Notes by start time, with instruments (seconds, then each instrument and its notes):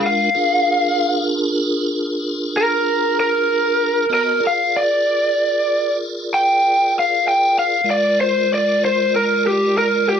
Already playing: tonewheel organ G#3 D4 F4 A#4
0.07 lead electric guitar F5
0.35 tonewheel organ D4 F4 G#4 A#4
2.57 lead electric guitar A#4
3.20 lead electric guitar A#4
4.10 tonewheel organ B3 F#4 D#5 A5
4.14 lead electric guitar A#4
4.40 tonewheel organ F4 G#4 A#4 D5
4.47 lead electric guitar F5
4.77 lead electric guitar D5
6.34 lead electric guitar G5
6.99 lead electric guitar F5
7.28 lead electric guitar G5
7.59 lead electric guitar F5
7.84 tonewheel organ G#3 F4 A#4 D5
7.90 lead electric guitar D5
8.21 lead electric guitar C5
8.54 lead electric guitar D5
8.85 lead electric guitar C5
9.16 lead electric guitar A#4
9.47 lead electric guitar G4
9.78 lead electric guitar A#4
10.09 lead electric guitar G4